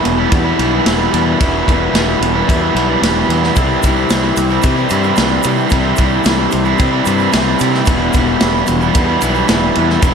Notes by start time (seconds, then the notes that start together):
Already playing: E2 B2 E3 G3 B3 E4
0.05 E1, muted overdriven electric guitar stroke, ride
0.18 E3 G3 B3 E4
0.31 E2 B2 E3 G3 B3 E4, kick, ride
0.45 E3 G3 B3 E4
0.58 B1 E3 G3 B3 E4, ride
0.73 E3 G3 B3 E4
0.86 E1 E2 B2 E3 G3 B3 E4, snare, ride
1.12 E2 E3 G3 B3 E4, ride
1.26 E3 G3 B3 E4
1.39 E1 E2 B2 E3 G3 B3 E4, kick, ride
1.66 E1 E3 G3 B3 E4, kick, ride
1.93 E1 E2 B2 E3 G3 B3 E4, snare, ride
2.07 E3 G3 B3 E4
2.21 E1, muted overdriven electric guitar stroke, ride
2.34 E3 G3 B3 E4
2.47 E2 B2 E3 G3 B3 E4, kick, ride
2.61 E3 G3 B3 E4
2.74 B1 E3 G3 B3 E4, ride
2.88 E3 G3 B3 E4
3.01 E1 E2 B2 E3 G3 B3 E4, snare, ride
3.29 E2 E3 G3 B3 E4, ride
3.42 E3 G3 B3 E4, snare
3.55 C2 C3 E3 G3 C4 E4, kick, ride, shaker
3.83 C2 E3 G3 C4 E4, kick, ride, shaker
4.10 C2 C3 E3 G3 C4 E4, snare, ride, shaker
4.23 G3 C4 E4
4.36 C2, muted overdriven electric guitar stroke, ride, shaker
4.50 G3 C4 E4, shaker
4.62 C3 E3 G3 C4 E4, kick, ride, shaker
4.77 G3 C4 E4
4.89 G2 E3 G3 C4 E4, ride, shaker
5.04 G3 C4 E4, shaker
5.16 C2 C3 E3 G3 C4 E4, snare, ride, shaker
5.43 C3 E3 G3 C4 E4, ride, shaker
5.57 G3 C4 E4
5.70 C2 C3 E3 G3 C4 E4, kick, ride, shaker
5.96 C2 E3 G3 C4, kick, ride, shaker
6.00 E4
6.24 C2 C3 E3 G3 C4 E4, snare, ride, shaker
6.38 G3 C4 E4
6.51 C2, muted overdriven electric guitar stroke, ride, shaker
6.65 G3 C4 E4, shaker
6.78 C3 E3 G3 C4 E4, kick, ride, shaker
6.91 G3 C4 E4
7.05 G2 E3 G3 C4 E4, ride, shaker
7.18 G3 C4 E4, shaker
7.31 C2 C3 E3 G3 C4 E4, snare, ride, shaker
7.59 C3 E3 G3 C4 E4, ride, shaker
7.73 G3 C4 E4, snare
7.86 E1 E2 B2 E3 G3 B3 E4, kick, ride, shaker
8.13 E1 E3 G3 B3 E4, kick, ride, shaker
8.41 E1 E2 B2 E3 G3 B3 E4, snare, ride, shaker
8.54 E3 G3 B3 E4
8.67 E1, muted overdriven electric guitar stroke, ride, shaker
8.81 E3 G3 B3 E4, shaker
8.94 E2 B2 E3 G3 B3 E4, kick, ride, shaker
9.08 E3 G3 B3 E4
9.21 B1 E3 G3 B3 E4, ride, shaker
9.35 E3 G3 B3 E4, shaker
9.48 E1 E2 B2 E3 G3 B3 E4, snare, ride, shaker
9.75 E2 E3 G3 B3 E4, ride
9.89 E3 G3 B3 E4, snare
10.01 E1 E2 B2 E3 G3 B3 E4, kick, ride, shaker